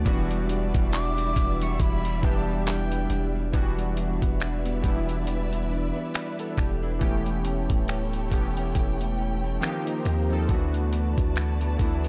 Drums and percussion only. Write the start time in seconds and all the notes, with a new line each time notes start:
0.06 kick, closed hi-hat
0.31 closed hi-hat
0.49 closed hi-hat
0.74 kick, closed hi-hat
0.93 clap, closed hi-hat
1.18 closed hi-hat
1.36 kick, closed hi-hat
1.62 closed hi-hat
1.80 kick, closed hi-hat
2.05 closed hi-hat
2.23 kick
2.67 clap, closed hi-hat
2.92 closed hi-hat
3.10 closed hi-hat
3.54 kick, closed hi-hat
3.79 closed hi-hat
3.97 closed hi-hat
4.22 kick, closed hi-hat
4.40 finger snap, closed hi-hat
4.66 closed hi-hat
4.84 kick, closed hi-hat
5.09 closed hi-hat
5.27 closed hi-hat
5.53 closed hi-hat
6.14 finger snap, closed hi-hat
6.39 closed hi-hat
6.57 finger snap, kick, closed hi-hat
7.01 kick, closed hi-hat
7.26 closed hi-hat
7.45 closed hi-hat
7.70 kick, closed hi-hat
7.88 finger snap, closed hi-hat
8.13 closed hi-hat
8.32 kick, closed hi-hat
8.57 closed hi-hat
8.75 kick, closed hi-hat
9.01 closed hi-hat
9.62 finger snap, closed hi-hat
9.87 closed hi-hat
10.05 finger snap, closed hi-hat
10.49 kick, closed hi-hat
10.74 closed hi-hat
10.93 closed hi-hat
11.18 kick, closed hi-hat
11.36 finger snap, closed hi-hat
11.61 closed hi-hat
11.79 kick, closed hi-hat
12.04 closed hi-hat